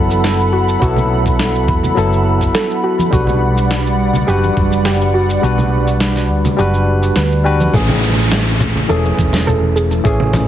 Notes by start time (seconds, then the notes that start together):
Already playing: F#1 F#3 B3 E4 A4 F#5 B5
0.11 shaker
0.24 A4, snare, shaker
0.40 shaker
0.53 F#4
0.69 shaker
0.80 B1 F#3 B3 E4 F#4 A4, kick, shaker
0.96 low conga, shaker
1.26 kick, shaker
1.39 snare, shaker
1.55 shaker
1.68 E2, kick
1.83 low conga, shaker
1.95 F#1 F#3 B3 E4 A4, shaker
2.13 shaker
2.41 kick, shaker
2.55 A4, snare, shaker
2.71 shaker
2.84 F#4
2.99 high conga, shaker
3.10 B1 G3 D4 F#4 B4 D5 F#5, kick, shaker
3.27 low conga, shaker
3.58 shaker
3.71 snare, shaker
3.86 shaker
4.13 low conga, shaker
4.27 F#1 G3 D4 F#4 G4 B4, shaker
4.43 high conga, shaker
4.57 F#1, kick
4.72 shaker
4.85 G4, snare, shaker
5.01 shaker
5.14 F#4
5.30 shaker
5.42 B1 G3 D4 F#4 B4, shaker
5.58 low conga, shaker
5.88 shaker
6.00 snare, shaker
6.16 snare, shaker
6.30 D2
6.45 low conga, shaker
6.57 F#1 G3 D4 F#4 G4 B4, shaker
6.74 shaker
7.03 shaker
7.16 D2 B4, snare, shaker
7.32 shaker
7.44 G3 D4 F#4 B4 G5
7.60 high conga, shaker
7.72 A1 E3 A3 C#4 G#4, kick, downlifter, low conga, shaker
7.89 muted conga, low conga
8.03 shaker
8.18 shaker
8.32 snare, muted conga, shaker
8.48 shaker
8.60 low conga, shaker
8.76 low conga, shaker
8.88 E1 E3 A3 C#4 G#4 A4, muted conga, shaker
9.05 high conga, shaker
9.18 E1, kick, shaker
9.33 snare, muted conga, shaker
9.47 A4, low conga, shaker
9.76 G#4, shaker
9.91 muted conga, shaker
10.03 A1 E3 A3 C#4 G#4, kick, shaker
10.20 low conga
10.33 muted conga, low conga, shaker